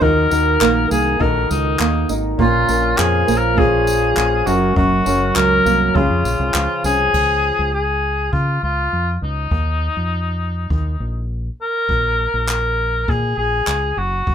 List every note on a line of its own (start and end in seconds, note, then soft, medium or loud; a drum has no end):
0.00 0.26 D#2 loud
0.00 1.18 D#3 medium
0.00 0.60 A#3 medium
0.00 0.23 D#4 medium
0.00 0.23 F#4 medium
0.00 0.24 A#4 medium
0.00 0.90 A#4 loud
0.00 kick loud
0.30 0.56 D#2 loud
0.30 0.95 D#4 medium
0.30 2.08 D#4 medium
0.30 0.96 F#4 medium
0.30 0.96 A#4 medium
0.30 tambourine medium
0.61 0.85 A#1 medium
0.61 0.90 A#3 medium
0.61 clap loud
0.91 1.15 C2 medium
0.91 1.80 A#3 medium
0.91 1.23 G#4 loud
0.91 tambourine medium
1.20 1.45 A#1 medium
1.20 2.45 D#3 medium
1.20 2.06 D#4 medium
1.20 2.06 F#4 medium
1.20 1.28 A4 medium
1.20 1.50 A#4 loud
1.20 kick loud
1.28 2.10 A#4 medium
1.51 1.75 C#2 loud
1.51 2.09 D#4 medium
1.51 tambourine medium
1.79 2.04 D#2 medium
1.79 3.27 A#3 medium
1.79 clap loud
2.09 2.34 G#1 medium
2.09 2.45 D#4 medium
2.09 tambourine medium
2.38 2.63 A#1 loud
2.38 3.56 A#2 medium
2.38 2.60 C#4 medium
2.38 2.60 F4 medium
2.38 2.99 F4 loud
2.38 2.61 A#4 medium
2.38 kick loud
2.68 2.93 A#1 loud
2.68 3.33 C#4 medium
2.68 5.06 C#4 medium
2.68 3.33 F4 medium
2.68 3.34 A#4 medium
2.68 tambourine medium
2.98 3.23 F2 loud
2.98 4.15 F3 medium
2.98 3.39 G#4 loud
2.98 clap loud
3.27 4.13 A#1 medium
3.27 4.52 A#3 medium
3.27 tambourine medium
3.37 3.59 A#4 loud
3.57 4.46 A#2 medium
3.57 4.43 C#4 medium
3.57 4.44 F4 medium
3.57 4.48 G#4 loud
3.57 4.44 G#4 loud
3.57 kick loud
3.87 tambourine medium
4.16 4.41 A#1 medium
4.16 4.52 F3 medium
4.16 clap loud
4.46 4.71 F#1 medium
4.46 4.75 F#2 medium
4.46 4.94 C#4 medium
4.46 4.76 F#4 medium
4.46 4.94 F#4 medium
4.46 4.95 A#4 medium
4.46 tambourine medium
4.76 5.01 F#1 loud
4.76 6.01 F#2 medium
4.76 5.32 F#4 medium
4.76 kick loud
5.05 5.30 F#1 loud
5.05 5.70 C#4 medium
5.05 6.84 C#4 medium
5.05 5.70 F#4 medium
5.05 5.71 A#4 medium
5.05 tambourine medium
5.36 5.60 C#2 medium
5.36 6.01 F#3 medium
5.36 5.97 A#4 loud
5.36 clap loud
5.65 5.90 C2 medium
5.65 6.01 A#3 medium
5.65 tambourine medium
5.94 6.07 C#2 loud
5.94 7.20 C#3 medium
5.94 6.80 C#4 medium
5.94 6.81 F4 medium
5.94 6.84 F4 medium
5.94 6.82 G#4 medium
5.94 kick loud
6.10 6.22 F2 medium
6.25 6.37 A#1 medium
6.25 tambourine medium
6.39 6.52 C2 medium
6.54 6.67 C#2 medium
6.54 7.70 F3 medium
6.54 clap loud
6.84 7.08 C2 medium
6.84 7.70 C#4 medium
6.84 7.70 G#4 loud
6.84 tambourine medium
7.14 7.50 C#2 medium
7.14 kick loud
7.14 crash medium
7.59 8.29 C#2 medium
7.74 8.29 G#4 medium
8.33 8.57 C#3 medium
8.33 8.60 F4 medium
8.33 kick loud
8.63 8.87 C#2 medium
8.63 9.18 F4 medium
8.93 9.17 F2 medium
9.22 9.46 C#2 medium
9.22 11.29 D#4 medium
9.51 9.88 D#2 medium
9.51 kick loud
9.97 10.67 F2 medium
10.70 10.95 D#2 medium
10.70 kick loud
11.00 11.49 A#1 medium
11.62 12.46 A#4 loud
11.89 12.26 A#1 medium
11.89 kick loud
12.34 13.04 A#1 medium
12.49 13.11 A#4 loud
12.49 clap loud
13.08 13.33 A#2 loud
13.08 13.37 G#4 medium
13.08 kick loud
13.37 13.62 A#1 medium
13.37 13.99 G#4 medium
13.67 13.92 C#2 medium
13.67 clap loud
13.97 14.21 F#1 medium
13.97 14.35 F#4 medium
14.27 14.35 F#1 medium
14.27 kick loud